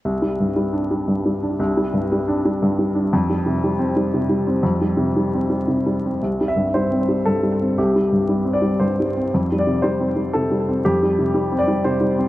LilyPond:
<<
  \new Staff \with { instrumentName = "Upright piano" } { \time 3/4 \key f \lydian \tempo 4 = 117 r2. | r2. | r2. | r2. |
r8 e''8 c''4 a'4 | g'4. d''8 c''4 | r8 d''8 c''4 a'4 | g'4. d''8 c''4 | }
  \new Staff \with { instrumentName = "Upright piano" } { \clef bass \time 3/4 \key f \lydian \tuplet 3/2 { c,8 g8 g,8 g8 d'8 g8 g,8 g8 d'8 } | \tuplet 3/2 { c,8 g8 g,8 g8 d'8 g8 g,8 g8 d'8 } | \tuplet 3/2 { f,8 g8 c8 g8 c'8 g8 c8 g8 c'8 } | \tuplet 3/2 { f,8 g8 c8 g8 c'8 g8 c8 g8 c'8 } |
\tuplet 3/2 { c,8 g8 g,8 g8 c'8 g8 g,8 g8 c'8 } | \tuplet 3/2 { c,8 g8 g,8 g8 c'8 g8 g,8 g8 c'8 } | \tuplet 3/2 { f,8 g8 c8 g8 c'8 g8 c8 g8 c'8 } | \tuplet 3/2 { f,8 g8 c8 g8 c'8 g8 c8 g8 c'8 } | }
>>